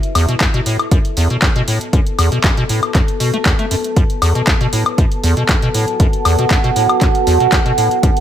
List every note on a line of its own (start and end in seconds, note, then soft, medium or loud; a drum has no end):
0.00 8.20 F#4 medium
0.00 8.20 B4 medium
0.00 4.46 E5 medium
0.00 8.20 A5 medium
0.00 closed hi-hat soft
0.15 0.26 E2 loud
0.15 open hi-hat loud
0.15 high woodblock medium
0.29 0.35 B2 medium
0.29 closed hi-hat soft
0.41 0.48 F#2 medium
0.41 kick loud
0.41 clap loud
0.41 closed hi-hat medium
0.54 0.61 B2 loud
0.54 closed hi-hat soft
0.66 0.77 A2 medium
0.66 open hi-hat loud
0.79 closed hi-hat soft
0.79 high woodblock medium
0.91 0.99 F#2 medium
0.91 kick loud
0.91 closed hi-hat medium
1.05 closed hi-hat soft
1.17 1.28 E2 medium
1.17 open hi-hat loud
1.30 1.37 B2 medium
1.30 closed hi-hat soft
1.42 1.50 F#2 medium
1.42 kick loud
1.42 clap loud
1.42 closed hi-hat medium
1.56 1.62 B2 loud
1.56 closed hi-hat soft
1.68 1.79 A2 medium
1.68 open hi-hat loud
1.81 closed hi-hat medium
1.93 2.00 F#2 medium
1.93 kick loud
1.93 closed hi-hat medium
2.07 closed hi-hat soft
2.19 2.30 E2 loud
2.19 open hi-hat loud
2.19 high woodblock medium
2.32 2.39 B2 medium
2.32 closed hi-hat soft
2.44 2.51 F#2 medium
2.44 kick loud
2.44 clap loud
2.44 closed hi-hat medium
2.57 2.64 B2 loud
2.57 closed hi-hat soft
2.69 2.80 A2 medium
2.69 open hi-hat loud
2.83 closed hi-hat soft
2.83 high woodblock medium
2.95 3.02 F#2 medium
2.95 kick loud
2.95 clap medium
2.95 closed hi-hat medium
3.08 closed hi-hat soft
3.20 3.31 B2 medium
3.20 open hi-hat loud
3.34 3.38 A3 medium
3.34 closed hi-hat soft
3.46 3.53 E2 loud
3.46 kick loud
3.46 clap loud
3.46 closed hi-hat medium
3.59 3.66 A3 medium
3.59 closed hi-hat soft
3.71 3.75 F#2 medium
3.71 open hi-hat loud
3.84 closed hi-hat soft
3.96 4.04 F#2 medium
3.96 kick loud
3.96 closed hi-hat medium
4.10 closed hi-hat soft
4.22 4.33 E2 loud
4.22 open hi-hat loud
4.22 high woodblock medium
4.31 4.42 B2 medium
4.31 8.20 F#5 medium
4.31 closed hi-hat soft
4.47 4.55 F#2 medium
4.47 kick loud
4.47 clap loud
4.47 closed hi-hat medium
4.61 4.67 B2 loud
4.61 closed hi-hat soft
4.73 4.84 A2 medium
4.73 open hi-hat loud
4.86 closed hi-hat soft
4.86 high woodblock medium
4.98 5.06 F#2 medium
4.98 kick loud
4.98 closed hi-hat medium
5.12 closed hi-hat soft
5.24 5.35 E2 medium
5.24 open hi-hat loud
5.37 5.44 B2 medium
5.37 closed hi-hat soft
5.49 5.56 F#2 medium
5.49 kick loud
5.49 clap loud
5.49 closed hi-hat medium
5.62 5.69 B2 loud
5.62 closed hi-hat soft
5.74 5.85 A2 medium
5.74 open hi-hat loud
5.88 closed hi-hat medium
6.00 6.07 F#2 medium
6.00 kick loud
6.00 closed hi-hat medium
6.13 closed hi-hat soft
6.25 6.36 E2 loud
6.25 open hi-hat loud
6.25 high woodblock medium
6.39 6.45 B2 medium
6.39 closed hi-hat soft
6.51 6.58 F#2 medium
6.51 kick loud
6.51 clap loud
6.51 closed hi-hat medium
6.64 6.71 B2 loud
6.64 closed hi-hat soft
6.76 6.87 A2 medium
6.76 open hi-hat loud
6.89 closed hi-hat soft
6.89 high woodblock medium
7.01 7.09 F#2 medium
7.01 kick loud
7.01 clap medium
7.01 closed hi-hat medium
7.15 closed hi-hat soft
7.27 7.38 E2 medium
7.27 open hi-hat loud
7.40 7.47 B2 medium
7.40 closed hi-hat soft
7.52 7.60 F#2 medium
7.52 kick loud
7.52 clap loud
7.52 closed hi-hat medium
7.66 7.72 B2 loud
7.66 closed hi-hat soft
7.78 7.89 A2 medium
7.78 open hi-hat loud
7.91 closed hi-hat medium
8.03 8.11 F#2 medium
8.03 kick loud
8.03 closed hi-hat medium
8.17 closed hi-hat soft